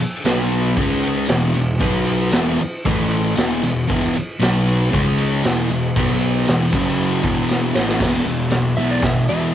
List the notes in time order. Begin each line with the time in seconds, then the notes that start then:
0.01 muted picked electric bass stroke
0.24 B1 B2 F#3 B3, snare, ride, tambourine
0.49 ride, tambourine
0.62 tambourine
0.74 C#2 C#3 G#3 C#4, kick, ride, tambourine
1.04 ride
1.26 E1 E2 B2, snare, ride, tambourine
1.30 E3
1.54 E1 E2 B2, ride, tambourine
1.80 B1 B2 F#3 B3, kick, ride
1.93 tambourine
2.04 ride, tambourine
2.31 E1 E2 B2 E3, snare, ride, tambourine
2.45 tambourine
2.58 muted distorted electric guitar stroke, ride, tambourine
2.71 tambourine
2.83 A1 A2 E3 A3, kick, ride, tambourine
3.10 ride
3.35 E1 E2 B2 E3, snare, ride, tambourine
3.63 E1 E2 B2, ride, tambourine
3.87 E1 E2 B2 E3, kick, ride
4.01 tambourine
4.14 muted picked electric bass stroke, muted distorted electric guitar stroke, ride, tambourine
4.39 B1 B2 F#3 B3, snare, ride, tambourine
4.54 tambourine
4.67 ride, tambourine
4.91 C#2 C#3 G#3 C#4, kick, ride, tambourine
5.18 ride
5.43 E1 E2 B2 E3, snare, ride, tambourine
5.69 E1 E2 B2, ride, tambourine
5.95 B1 B2 F#3 B3, kick, ride, tambourine
6.07 tambourine
6.18 ride, tambourine
6.32 tambourine
6.45 E1, snare, ride, tambourine
6.49 E2 B2 E3
6.59 tambourine
6.71 F#1 F#2 F#3, kick, tambourine, crash
6.75 C#3
6.85 tambourine
7.11 tambourine
7.23 E1 E2 B2 E3, kick, ride
7.36 tambourine
7.48 snare, tambourine
7.62 tambourine
7.74 A1 A2 E3 A3, snare, tambourine
7.89 snare
8.00 E1 E2 B2 E3, kick, snare, crash, tambourine
8.25 E1 E2 B2, tambourine
8.50 B1 E2 B2, snare, tambourine, crash
8.76 B1 E2 B2 E3 E5, tambourine
8.91 D5
9.02 E1 E2 B2 E5, kick, snare, tambourine, crash
9.28 E2 B2 E3 E5, tambourine